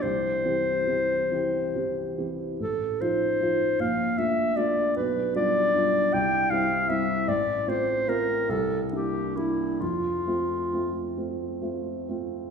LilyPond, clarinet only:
\new Staff \with { instrumentName = "Clarinet" } { \time 6/8 \key f \major \tempo 4. = 48 c''2~ c''8 r8 | a'8 c''4 f''8 e''8 d''8 | b'8 d''4 g''8 f''8 e''8 | d''8 c''8 bes'8 a'8 g'8 e'8 |
f'4. r4. | }